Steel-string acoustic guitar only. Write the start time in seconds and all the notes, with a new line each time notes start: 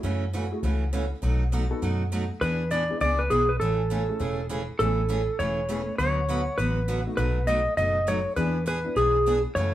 0.03 C#3 E3 A3 C#4 F#4
0.33 C#3 E3 A3 C#4 F#4
0.63 C#3 E3 A3 C#4 F#4
0.93 C#3 E3 A3 C#4 F#4
1.22 B2 F#3 A3 D#4 F#4
1.52 B2 F#3 A3 D#4 F#4
1.82 B2 F#3 A3 D#4 F#4
2.12 B2 F#3 A3 D#4 F#4
2.41 E3 B3 D4 G#4
2.71 E3 B3 D4 G#4
3.00 E3 B3 D4 G#4
3.30 E3 B3 D4 G#4
3.61 C#3 E3 A3 C#4 G#4
3.90 C#3 E3 A3 C#4 G#4
4.19 C#3 E3 A3 C#4 G#4
4.49 C#3 E3 A3 C#4 G#4
4.79 C#3 E3 A3 C#4 G#4
5.09 C#3 E3 A3 C#4 G#4
5.39 C#3 E3 A3 C#4 G#4
5.69 C#3 E3 A3 C#4 G#4
5.99 D3 F#3 B3 F#4 B4
6.29 D3 F#3 B3 F#4 B4
6.58 D3 F#3 B3 F#4 B4
6.88 D3 F#3 B3 F#4 B4
7.17 B2 F#3 A3 D#4 F#4
7.47 B2 F#3 A3 D#4 F#4
7.77 B2 F#3 A3 D#4 F#4
8.07 B2 F#3 A3 D#4 F#4
8.36 E3 B3 D4 G#4
8.66 E3 B3 D4 G#4
8.96 E3 B3 D4 G#4
9.26 E3 B3 D4 G#4
9.56 C#3 E3 A3 C#4 F#4